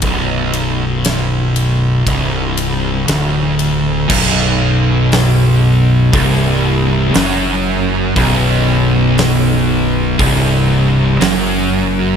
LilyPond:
<<
  \new Staff \with { instrumentName = "Distorted electric guitar" } { \clef bass \time 4/4 \key b \minor \tempo 4 = 59 b,,2 c,4 d,4 | b,,2 c,4 fis,4 | b,,2 c,4 fis,4 | }
  \new Staff \with { instrumentName = "Distorted electric guitar" } { \clef bass \time 4/4 \key b \minor b,,2 c,4 d,4 | b,,2 c,4 fis,4 | b,,2 c,4 fis,4 | }
  \new Staff \with { instrumentName = "Distorted electric guitar" } { \clef bass \time 4/4 \key b \minor r1 | b,,2 c,4 fis,4 | b,,2 c,4 fis,4 | }
  \new Staff \with { instrumentName = "Fingered electric bass" } { \clef bass \time 4/4 \key b \minor b,,,2 c,,4 d,,4 | b,,,2 c,,4 fis,,4 | b,,,2 c,,4 fis,,4 | }
  \new DrumStaff \with { instrumentName = "Drums" } \drummode { \time 4/4 <bd cymr>8 cymr8 <cymr sn>8 cymr8 <bd cymr>8 cymr8 <cymr sn>8 cymr8 | <cymc bd>4 <hho sn>4 <hho bd>4 <hho sn>4 | <hho bd>4 <hho sn>4 <hho bd>4 <hho sn>4 | }
>>